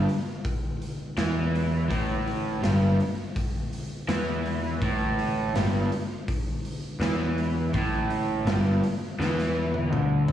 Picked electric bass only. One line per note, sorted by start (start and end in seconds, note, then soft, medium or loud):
1.17 1.87 E2 medium
1.90 2.59 A1 medium
2.63 2.97 G1 medium
4.08 4.78 E2 medium
4.82 5.51 A1 medium
5.53 5.88 G1 medium
7.00 7.69 E2 medium
7.74 8.43 A1 medium
8.45 8.80 G1 medium
9.19 9.88 E2 loud
9.91 10.32 D2 medium